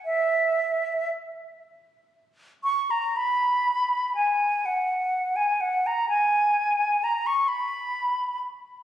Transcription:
X:1
M:6/8
L:1/16
Q:3/8=40
K:G#m
V:1 name="Flute"
e4 z6 c' a | b4 g2 f3 g f a | g4 a c' b4 z2 |]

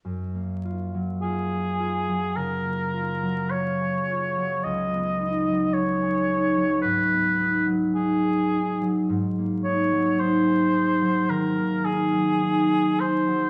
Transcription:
X:1
M:4/4
L:1/16
Q:1/4=53
K:F#
V:1 name="Oboe"
z4 G4 A4 c4 | d4 c4 B3 z G4 | z2 c2 ^B4 A2 G4 B2 |]
V:2 name="Harp"
F,, A, E F, E G E F, C, A, E F, E G E F, | C,, B, D F, D G D F, G,, B, D F, D G D F, | G,, A, D F, D G D F, D, A, D F, D G D F, |]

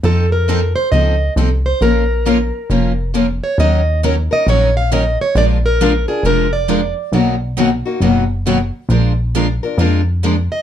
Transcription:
X:1
M:4/4
L:1/8
Q:"Swing" 1/4=135
K:Bbm
V:1 name="Steel-string acoustic guitar"
=A B2 c e2 z c | B6 z d | [K:Ebm] e2 z e d f e d | =d B2 A B d2 z |
z8 | z6 z e |]
V:2 name="Steel-string acoustic guitar"
[F,CE=A] z [F,CEA] z [F,CEA] z [F,CEA] z | [F,B,DFB] z [F,B,DFB] z [F,B,DFB] z [F,B,DFB] z | [K:Ebm] [E,G,DEB] z [E,G,DEB] [DEB] [E,G,DEB] z [E,G,DEB] z | [F,A,=DFB] z [F,A,DFB] [DFB] [F,A,DFB] z [F,A,DFB] z |
[=B,,^F,^A,^D^F] z [B,,F,A,DF] [A,DF] [B,,F,A,DF] z [B,,F,A,DF] z | [F,A,=DFB] z [F,A,DFB] [DFB] [F,A,DFB] z [F,A,DFB] z |]
V:3 name="Steel-string acoustic guitar"
[F,CE=A] z [F,CEA] z [F,CEA] z [F,CEA] z | [F,B,DFB] z [F,B,DFB] z [F,B,DFB] z [F,B,DFB] z | [K:Ebm] [E,G,DEB] z [E,G,DEB] z [E,G,DEB] z [E,G,DEB] z | [F,A,=DFB] z [F,A,DFB] z [F,A,DFB] z [F,A,DFB] z |
[=B,,^D,^F,=B,^D^A] z [B,,D,F,B,DA] z [B,,D,F,B,DA] z [B,,D,F,B,DA] z | [F,A,=DFB] z [F,A,DFB] z [F,A,DFB] z [F,A,DFB] z |]
V:4 name="Analog synth bass" clef=bass
F,,4 D,,2 C,,2 | B,,,4 F,,,4 | [K:Ebm] E,,4 B,,,4 | B,,,4 F,,,4 |
=B,,,4 ^F,,,4 | B,,,4 F,,4 |]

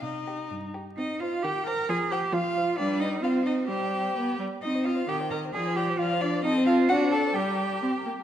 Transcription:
X:1
M:2/4
L:1/16
Q:1/4=131
K:Cm
V:1 name="Violin"
z2 G2 z2 G2 | e2 f2 g2 b2 | a2 g2 f4 | d2 e2 f2 e2 |
g6 z2 | e2 f2 g2 b2 | a2 g2 f2 d2 | [K:Gm] e2 f2 ^f2 a2 |
g6 z2 |]
V:2 name="Violin"
e4 z4 | z2 c2 z2 c2 | z2 c2 z2 c2 | =B4 c4 |
c4 =B2 z2 | e c e c e c e c | d c d c d c d c | [K:Gm] A c A c d c d c |
G B G B G B G B |]
V:3 name="Cello"
C,4 G,,4 | E2 F2 G2 B2 | A2 G2 F4 | D2 E2 F2 E2 |
G6 z2 | E2 F2 G2 B2 | A2 G2 F2 D2 | [K:Gm] E2 F2 ^F2 A2 |
G6 z2 |]
V:4 name="Viola" clef=bass
E6 z2 | C4 E,4 | F,4 F,4 | G,4 C4 |
G,4 =B,2 G,2 | C4 E,4 | F,4 F,4 | [K:Gm] C4 D4 |
G,4 C2 B,2 |]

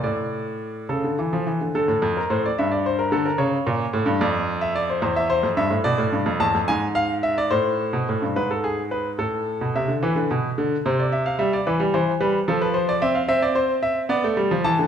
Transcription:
X:1
M:6/8
L:1/16
Q:3/8=73
K:Dm
V:1 name="Grand piano"
d6 A6 | A3 B c d e d c B A B | ^c6 d3 e d =c | c e c2 e2 d4 a2 |
^g2 f2 e d c6 | =B A ^G2 B2 A4 e2 | =B6 c d e f e d | =B2 c2 B2 A B c d e f |
e d c2 e2 d4 a2 |]
V:2 name="Grand piano" clef=bass
A,,6 ^C, D, E, F, E, D, | D, A,, F,,2 A,,2 G,,4 D,2 | ^C,2 B,,2 A,, G,, F,,6 | E,,3 F,, G,, A,, =B,, A,, G,, F,, E,, F,, |
^G,,6 A,,3 =B,, A,, =G,, | ^G,,6 A,,3 =B,, C, D, | E, D, =B,,2 D,2 C,4 G,2 | E, G, E,2 G,2 F,4 C2 |
C6 =B, A, G, F, E, D, |]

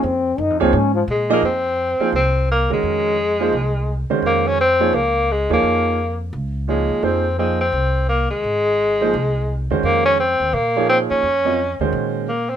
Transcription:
X:1
M:4/4
L:1/16
Q:"Swing" 1/4=172
K:Fphr
V:1 name="Grand piano"
z6 [F,B,EAd]2 z6 [F,B,EAe]2 | z6 [F,B,EAc]2 z6 [E,A,DGB]2- | [E,A,DGB]4 z2 [F,B,EAc]2 z6 [E,A,DGc]2- | [E,A,DGc]4 z2 [F,B,EAd]2 z6 [F,B,EAd]2- |
[F,B,EAd]4 z8 [F,B,EAd]4 | [F,B,EAc]2 z2 [F,B,EAe]2 z8 z2 | z6 [F,B,EAc]2 z6 [E,A,DGc]2- | [E,A,DGc]4 z6 [F,B,EAd]6 |
z2 [G,CFBe]2 z2 [E,A,DGc]6 z4 |]
V:2 name="Trombone"
C4 E2 C2 D2 F,2 z4 | z16 | z16 | z16 |
z16 | z16 | z16 | z16 |
z16 |]
V:3 name="Tenor saxophone"
z12 A,2 B,2 | C8 C4 B,2 A,2- | A,12- A,2 z2 | B,2 D2 C4 B,4 A,2 B,2- |
B,6- B, z4 z A,4 | C4 C2 C6 B,2 A,2- | A,12- A,2 z2 | B,2 D2 C4 B,4 C2 D2- |
D6- D z4 z B,2 C2 |]
V:4 name="Upright bass" clef=bass
F,,4 (3G,,2 F,,2 D,,2 A,,4 B,,4 | F,,6 z2 C,,6 z2 | F,,8 C,,6 z2 | F,,8 D,,6 E,,2 |
F,,8 D,,6 E,,2 | F,,8 C,,6 E,,2 | A,,,8 C,,6 =E,,2 | F,,6 E,,2 B,,6 =E,,2 |
F,,6 E,,2 B,,8 |]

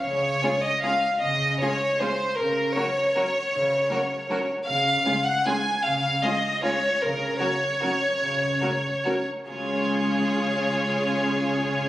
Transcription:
X:1
M:3/4
L:1/8
Q:1/4=151
K:Db
V:1 name="Violin section"
d3 e f2 | e2 d2 c2 | B2 d4- | d4- d z |
f3 g a2 | f2 e2 d2 | B2 d4- | d4- d z |
d6- | d6 |]
V:2 name="Violin section"
z2 [FA]2 [FA]2 | z2 [FA]2 [FA]2 | z2 [GB]2 [GB]2 | z2 [GB]2 [GB]2 |
z2 [FA]2 [FA]2 | z2 [FA]2 [FA]2 | z2 [GB]2 [GB]2 | z2 [GB]2 [GB]2 |
[FA]6- | [FA]6 |]
V:3 name="Viola section"
z2 [A,D]2 [A,D]2 | z2 [A,D]2 [A,D]2 | z2 [G,D]2 [G,D]2 | z2 [G,D]2 [G,D]2 |
z2 [A,D]2 [A,D]2 | z2 [A,D]2 [A,D]2 | z2 [G,D]2 [G,D]2 | z2 [G,D]2 [G,D]2 |
[A,D]6- | [A,D]6 |]
V:4 name="Cello section" clef=bass
D,2 z4 | D,2 z4 | D,2 z4 | D,2 z4 |
D,2 z4 | D,2 z4 | D,2 z4 | D,2 z4 |
D,6- | D,6 |]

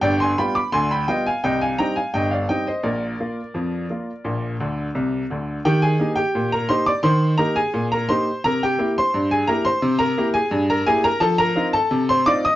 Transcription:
X:1
M:2/4
L:1/16
Q:1/4=86
K:Eb
V:1 name="Upright piano"
[dg] [ac'] [g=b] [bd'] [ac'] [gb] [eg] [fa] | [eg] [fa] [gb] [fa] [eg] [df] [eg] [ce] | [Bd]8- | [Bd]4 z4 |
[Gg] [Aa]2 [Gg]2 [Bb] [cc'] [dd'] | [cc']2 [Bb] [Aa]2 [Bb] [cc']2 | [Bb] [Gg]2 [cc']2 [Aa] [Bb] [cc']- | [cc'] [Bb]2 [Aa]2 [Bb] [Aa] [Bb] |
[=A=a] [Bb]2 [Aa]2 [cc'] [dd'] [ee'] |]
V:2 name="Upright piano"
[G,,,G,,]2 [G,=B,F]2 [D,,D,]2 [G,B,F]2 | [C,,C,]2 [G,CE]2 [G,,,G,,]2 [G,CE]2 | [B,,,B,,]2 [B,F]2 [F,,F,]2 [B,F]2 | [B,,,B,,]2 [D,,D,]2 [C,,C,]2 [D,,D,]2 |
E,2 [B,EG]2 B,,2 [B,EG]2 | E,2 [B,EG]2 B,,2 [B,EG]2 | C,2 [B,=EG]2 G,,2 [B,EG]2 | C,2 [B,=EG]2 G,,2 [B,EG]2 |
F,2 [CEF]2 C,2 [CEF]2 |]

